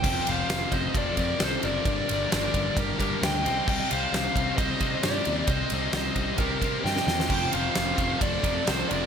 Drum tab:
CC |x---------------|----------------|x---------------|----------------|
RD |--x-x-x-x-x-x-x-|x-x-x-x-x-x-x-x-|--x-x-x-x-x-x-x-|x-x-x-x-x-x-----|
SD |----o-------o---|----o-------o---|----o-------o---|----o-------oooo|
BD |o-----o-o-o-----|o-----o-o-o-----|o-----o-o-o-----|o-----o-o-o-----|

CC |x---------------|
RD |--x-x-x-x-x-x-x-|
SD |----o-------o---|
BD |o-----o-o-o-----|